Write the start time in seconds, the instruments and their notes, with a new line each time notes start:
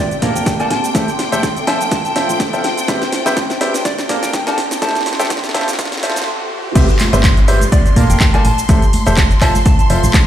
Already playing: ambient pad C4 G4, soft synth lead D5, string section G5, riser
0.11 closed hi-hat, cabasa
0.22 fm bass A#2, grand piano A#3 A4 A#4 D5 F5, kick, snare, open hi-hat
0.31 ambient pad C6
0.35 fm bass F1, soft synth lead G5, closed hi-hat, cabasa
0.46 soft synth lead G5, kick, snare, closed hi-hat, cabasa
0.60 grand piano A3 A4 A#4 D5 F5, soft synth lead A5, closed hi-hat, cabasa
0.70 fm bass A1, ambient pad A4, soft synth lead A5, snare, open hi-hat
0.84 closed hi-hat, cabasa
0.95 fm bass A1, grand piano A3 G4 A4 C5 E5, kick, snare, closed hi-hat, cabasa
1.08 closed hi-hat, cabasa
1.15 ambient pad E5
1.19 snare, open hi-hat
1.32 fm bass E1, grand piano A3 G4 A4 C5 E5, closed hi-hat, cabasa
1.43 kick, snare, closed hi-hat, cabasa
1.56 closed hi-hat, cabasa
1.67 grand piano F3 F4 A4 C5 E5, ambient pad F4, soft synth lead A5, snare, open hi-hat
1.81 closed hi-hat, cabasa
1.91 soft synth lead A5, kick, snare, closed hi-hat, cabasa
2.05 soft synth lead A5, closed hi-hat, cabasa
2.09 ambient pad C5 A5
2.16 fm bass F1, grand piano F3 F4 A4 C5 E5, snare, open hi-hat
2.22 ambient pad G5
2.29 fm bass A1, closed hi-hat, cabasa
2.40 kick, snare, closed hi-hat, cabasa
2.53 grand piano F3 F4 A4 C5 E5, closed hi-hat, cabasa
2.64 snare, open hi-hat
2.77 closed hi-hat, cabasa
2.88 fm bass C2, ambient pad C4, grand piano C4 G4 B4 C5 E5, kick, snare, closed hi-hat, cabasa
3.02 snare, closed hi-hat, cabasa
3.12 snare, open hi-hat
3.26 fm bass G1, grand piano C4 G4 B4 C5 E5, snare, closed hi-hat, cabasa
3.37 kick, snare, closed hi-hat, cabasa
3.50 snare, closed hi-hat, cabasa
3.61 grand piano G4 B4 C5 E5, snare, open hi-hat
3.74 snare, closed hi-hat, cabasa
3.85 soft synth lead D5, kick, snare, closed hi-hat, cabasa
3.98 snare, closed hi-hat, cabasa
4.09 fm bass A#2, grand piano A#3 A4 A#4 D5 F5, kick, snare, open hi-hat
4.19 fm bass F1, soft synth lead G5, ambient pad C6
4.23 snare, closed hi-hat, cabasa
4.33 soft synth lead G5, kick, snare, closed hi-hat, cabasa
4.47 grand piano A3 A4 A#4 D5 F5, soft synth lead A5, snare, closed hi-hat, cabasa
4.58 fm bass A1, ambient pad A4, snare, open hi-hat
4.71 snare, closed hi-hat, cabasa
4.82 fm bass A1, grand piano A3 G4 A4 C5 E5, soft synth lead A5, kick, snare, closed hi-hat, cabasa
4.89 snare
4.95 snare, closed hi-hat, cabasa
5.01 ambient pad E5, snare
5.06 snare, open hi-hat
5.13 snare
5.19 fm bass E1, grand piano A3 G4 A4 C5 E5, soft synth lead G5, snare, closed hi-hat, cabasa
5.25 snare
5.30 soft synth lead G5, kick, snare, closed hi-hat, cabasa
5.37 snare
5.44 snare, closed hi-hat, cabasa
5.49 snare
5.54 grand piano F3 F4 A4 C5 E5, kick, snare, open hi-hat
5.61 snare
5.68 snare, closed hi-hat, cabasa
5.73 snare
5.79 kick, snare, closed hi-hat, cabasa
5.85 snare
5.92 snare, closed hi-hat, cabasa
5.97 snare
6.03 fm bass F1, grand piano F3 F4 A4 C5 E5, snare, open hi-hat
6.10 snare
6.16 fm bass C2, snare, closed hi-hat, cabasa
6.22 snare
6.75 fm bass C2, grand piano C4 G4 B4 C5 E5, string section C6, kick, closed hi-hat, crash, tambourine, downlifter, cabasa
6.89 closed hi-hat, cabasa
6.99 clap, open hi-hat, tambourine, high conga
7.13 fm bass G1, grand piano C4 G4 B4 C5 E5, closed hi-hat, tambourine, cabasa
7.23 kick, clap, closed hi-hat, cabasa
7.37 closed hi-hat, cabasa
7.48 grand piano G4 B4 C5 E5, open hi-hat, tambourine
7.61 closed hi-hat, tambourine, high conga, cabasa
7.72 soft synth lead D5, kick, closed hi-hat, tambourine, cabasa
7.86 closed hi-hat, cabasa
7.96 fm bass A#2, grand piano A#3 A4 A#4 D5 F5, kick, open hi-hat, tambourine
8.10 fm bass F1, soft synth lead G5, closed hi-hat, tambourine, cabasa
8.20 soft synth lead G5, kick, clap, closed hi-hat, tambourine, cabasa
8.34 grand piano A3 A4 A#4 D5 F5, soft synth lead A5, closed hi-hat, high conga, cabasa
8.45 fm bass A1, soft synth lead A5, open hi-hat, tambourine
8.58 closed hi-hat, tambourine, cabasa
8.68 fm bass A1, grand piano A3 G4 A4 C5 E5, kick, closed hi-hat, tambourine, cabasa
8.82 closed hi-hat, cabasa
8.93 open hi-hat, tambourine, high conga
9.06 fm bass E1, grand piano A3 G4 A4 C5 E5, closed hi-hat, tambourine, cabasa
9.17 kick, clap, closed hi-hat, cabasa
9.31 closed hi-hat, cabasa
9.41 grand piano F3 F4 A4 C5 E5, soft synth lead A5, kick, clap, open hi-hat, tambourine
9.54 closed hi-hat, tambourine, high conga, cabasa
9.65 soft synth lead A5, kick, closed hi-hat, tambourine, cabasa
9.79 soft synth lead A5, closed hi-hat, cabasa
9.90 fm bass F1, grand piano F3 F4 A4 C5 E5, open hi-hat, tambourine
10.03 fm bass A1, closed hi-hat, tambourine, cabasa
10.14 kick, clap, closed hi-hat, cabasa